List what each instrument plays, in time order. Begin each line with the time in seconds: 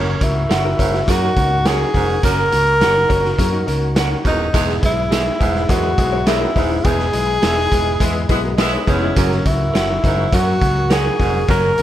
Already playing: fingered electric bass F#1, baritone saxophone F#2, grand piano A#3 C#4 F#4 A#4, tenor saxophone C#4, tonewheel organ A#4 F#5 C#6
0.20 fingered electric bass C#2, grand piano A#3 C#4 F#4 A#4, tenor saxophone E4, kick, closed hi-hat
0.49 fingered electric bass F#1, grand piano A#3 C#4 F#4 A#4, clean electric guitar A#4 C#5 F#5, snare, closed hi-hat
0.65 hollow-body jazz guitar F#4 A#4
0.79 fingered electric bass F#1, baritone saxophone G#2, grand piano A#3 C#4 F#4 A#4, hollow-body jazz guitar A#4 C#5, kick, closed hi-hat
0.94 hollow-body jazz guitar F#4 A#4, snare
1.08 fingered electric bass F#2, baritone saxophone F#2, grand piano A#3 C#4 F#4 A#4, hollow-body jazz guitar E4 G#4, tenor saxophone F#4, kick, closed hi-hat
1.23 hollow-body jazz guitar D#4 F#4
1.36 fingered electric bass C#2, grand piano A#3 C#4 F#4 A#4, kick, closed hi-hat
1.65 baritone saxophone F#2, grand piano A#3 C#4 F#4 A#4, tenor saxophone G#4, clean electric guitar A#4 C#5 F#5, snare, closed hi-hat
1.94 fingered electric bass F1, baritone saxophone G#2, grand piano A#3 C#4 F#4 A#4, kick, snare, open hi-hat
2.23 fingered electric bass F#1, baritone saxophone F#2, grand piano A#3 C#4 F#4 A#4, tenor saxophone A#4, kick, closed hi-hat
2.51 fingered electric bass C#2, grand piano A#3 C#4 F#4 A#4, closed hi-hat
2.80 fingered electric bass F#1, grand piano A#3 C#4 F#4 A#4, clean electric guitar A#4 C#5 F#5, snare, closed hi-hat
3.09 fingered electric bass F#1, grand piano A#3 C#4 F#4 A#4, hollow-body jazz guitar A#4 C#5, kick, closed hi-hat
3.24 hollow-body jazz guitar F#4 A#4, snare
3.38 fingered electric bass F#2, grand piano A#3 C#4 F#4 A#4, hollow-body jazz guitar E4 G#4, kick, closed hi-hat
3.53 hollow-body jazz guitar D#4 F#4
3.66 fingered electric bass C#2, grand piano A#3 C#4 F#4 A#4, closed hi-hat
3.95 grand piano A#3 C#4 F#4 A#4, clean electric guitar A#4 C#5 F#5, snare, closed hi-hat
4.24 fingered electric bass D#1, baritone saxophone E2, grand piano A#3 C#4 F#4 A#4, tenor saxophone D#4, kick, snare, closed hi-hat
4.53 fingered electric bass E1, baritone saxophone E2, grand piano G#3 B3 E4 G#4, tonewheel organ G#4 E5 B5, kick, closed hi-hat
4.69 snare
4.81 fingered electric bass B1, grand piano G#3 B3 E4 G#4, tenor saxophone E4, kick, closed hi-hat
5.10 grand piano G#3 B3 E4 G#4, clean electric guitar G#4 B4 E5, snare, closed hi-hat
5.39 fingered electric bass E1, baritone saxophone G#2, grand piano G#3 B3 E4 G#4, kick, closed hi-hat
5.55 snare
5.68 fingered electric bass E2, baritone saxophone F#2, grand piano G#3 B3 E4 G#4, tenor saxophone F#4, kick, closed hi-hat
5.97 fingered electric bass B1, grand piano G#3 B3 E4 G#4, kick, closed hi-hat
6.12 hollow-body jazz guitar A#4 C#5
6.26 baritone saxophone F#2, grand piano G#3 B3 E4 G#4, tenor saxophone E4, clean electric guitar G#4 B4 E5, hollow-body jazz guitar G#4 B4, snare, closed hi-hat
6.41 hollow-body jazz guitar F#4 A#4
6.55 fingered electric bass D#1, baritone saxophone G#2, grand piano G#3 B3 E4 G#4, hollow-body jazz guitar E4 G#4, kick, snare, open hi-hat
6.70 hollow-body jazz guitar C#4 E4
6.84 fingered electric bass E1, baritone saxophone E2, grand piano G#3 B3 E4 G#4, tenor saxophone G#4, tonewheel organ D#5, kick, closed hi-hat
6.99 snare
7.13 fingered electric bass B1, grand piano G#3 B3 E4 G#4, closed hi-hat
7.42 fingered electric bass E1, grand piano G#3 B3 E4 G#4, clean electric guitar G#4 B4 E5, snare, closed hi-hat
7.72 fingered electric bass E1, grand piano G#3 B3 E4 G#4, kick, closed hi-hat
8.00 fingered electric bass E2, horn section G#3 B3 E4, grand piano G#3 B3 E4 G#4, kick, closed hi-hat
8.29 fingered electric bass B1, grand piano G#3 B3 E4 G#4, horn section G#3 B3 E4, hollow-body jazz guitar E4 G#4, kick, closed hi-hat
8.44 hollow-body jazz guitar F#4 A#4
8.58 grand piano G#3 B3 E4 G#4, horn section G#3 B3 E4, clean electric guitar G#4 B4 E5, hollow-body jazz guitar G#4 B4, snare, closed hi-hat
8.73 hollow-body jazz guitar A#4 C#5
8.87 fingered electric bass F1, baritone saxophone E2, grand piano G#3 B3 E4 G#4, tenor saxophone C#4, hollow-body jazz guitar G#4 B4, kick, snare, closed hi-hat
9.02 hollow-body jazz guitar E4 G#4
9.16 fingered electric bass F#1, baritone saxophone F#2, grand piano F#3 A#3 C#4 F#4, tonewheel organ A#4 F#5 C#6, kick, closed hi-hat
9.31 snare
9.45 fingered electric bass C#2, grand piano F#3 A#3 C#4 F#4, tenor saxophone E4, kick, closed hi-hat
9.74 fingered electric bass F#1, grand piano F#3 A#3 C#4 F#4, clean electric guitar A#4 C#5 F#5, snare, closed hi-hat
10.03 fingered electric bass F#1, baritone saxophone G#2, grand piano F#3 A#3 C#4 D#4, kick, closed hi-hat
10.33 fingered electric bass F#2, baritone saxophone F#2, grand piano F#3 A#3 C#4 F#4, tenor saxophone F#4, kick, closed hi-hat
10.61 fingered electric bass C#2, grand piano F#3 A#3 C#4 F#4, kick, closed hi-hat
10.90 baritone saxophone F#2, grand piano F#3 A#3 C#4 F#4, tenor saxophone G#4, clean electric guitar A#4 C#5 F#5, snare, closed hi-hat
11.19 fingered electric bass F1, baritone saxophone G#2, grand piano F#3 A#3 C#4 F#4, kick, snare, open hi-hat
11.48 fingered electric bass F#1, baritone saxophone F#2, grand piano F#3 A#3 C#4 F#4, tenor saxophone A#4, tonewheel organ G#5, kick, closed hi-hat
11.78 fingered electric bass C#2, grand piano F#3 A#3 C#4 F#4, closed hi-hat